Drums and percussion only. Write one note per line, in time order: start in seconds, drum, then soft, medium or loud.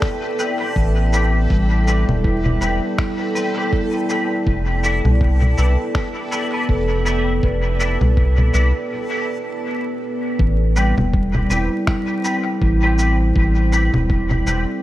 0.02 finger snap medium
0.02 kick medium
0.39 shaker soft
0.76 kick loud
1.13 shaker soft
1.50 kick loud
1.87 shaker soft
2.09 low conga medium
2.24 kick loud
2.46 low conga medium
2.62 shaker soft
2.98 finger snap medium
2.98 kick medium
3.36 shaker soft
3.73 kick loud
4.10 shaker soft
4.47 kick medium
4.84 shaker soft
5.05 low conga medium
5.21 kick loud
5.42 low conga medium
5.58 shaker soft
5.95 finger snap medium
5.95 kick medium
6.32 shaker medium
6.69 kick medium
7.06 shaker soft
7.43 kick medium
7.80 shaker medium
8.01 low conga medium
8.17 kick loud
8.38 low conga medium
8.54 shaker medium
10.39 kick loud
10.76 shaker medium
10.98 low conga medium
11.13 kick loud
11.34 low conga medium
11.50 shaker medium
11.87 finger snap medium
11.87 kick loud
12.24 shaker medium
12.62 kick loud
12.99 shaker medium
13.36 kick loud
13.73 shaker medium
13.94 low conga medium
14.10 kick loud
14.31 low conga medium
14.47 shaker medium